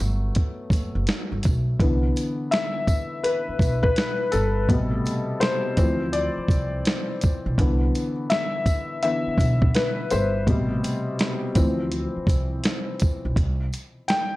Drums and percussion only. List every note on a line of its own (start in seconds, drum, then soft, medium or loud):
0.35 kick medium
0.35 closed hi-hat medium
0.70 kick medium
0.70 closed hi-hat medium
0.70 tambourine soft
1.07 snare loud
1.07 closed hi-hat medium
1.43 kick medium
1.43 closed hi-hat medium
1.43 tambourine medium
1.80 kick loud
1.80 closed hi-hat medium
2.16 closed hi-hat medium
2.16 tambourine soft
2.52 snare loud
2.52 closed hi-hat medium
2.87 kick medium
2.87 closed hi-hat medium
2.87 tambourine medium
3.24 closed hi-hat medium
3.59 kick medium
3.59 closed hi-hat medium
3.59 tambourine medium
3.84 kick loud
3.96 snare loud
3.96 closed hi-hat medium
4.32 closed hi-hat medium
4.32 tambourine medium
4.69 kick loud
4.69 closed hi-hat medium
5.06 closed hi-hat medium
5.06 tambourine soft
5.41 snare loud
5.41 closed hi-hat medium
5.77 kick loud
5.77 closed hi-hat medium
5.77 tambourine medium
6.13 closed hi-hat medium
6.48 kick medium
6.48 closed hi-hat medium
6.48 tambourine soft
6.85 snare loud
6.85 closed hi-hat medium
7.21 kick medium
7.21 closed hi-hat medium
7.21 tambourine medium
7.58 kick loud
7.58 closed hi-hat medium
7.95 closed hi-hat medium
7.95 tambourine soft
8.30 snare loud
8.30 closed hi-hat medium
8.66 kick medium
8.66 closed hi-hat medium
8.66 tambourine medium
9.03 closed hi-hat medium
9.38 kick medium
9.38 closed hi-hat medium
9.38 tambourine soft
9.62 kick loud
9.75 snare loud
9.75 closed hi-hat medium
10.11 closed hi-hat medium
10.11 tambourine medium
10.47 kick loud
10.47 closed hi-hat medium
10.84 closed hi-hat medium
10.84 tambourine soft
11.19 snare loud
11.19 closed hi-hat medium
11.55 kick loud
11.55 closed hi-hat medium
11.55 tambourine medium
11.92 closed hi-hat medium
12.27 kick medium
12.27 closed hi-hat medium
12.27 tambourine soft
12.64 snare loud
12.64 closed hi-hat medium
13.00 kick medium
13.00 closed hi-hat medium
13.00 tambourine medium
13.36 kick loud
13.36 closed hi-hat medium
13.73 closed hi-hat medium
13.73 tambourine soft
14.09 snare loud
14.09 closed hi-hat medium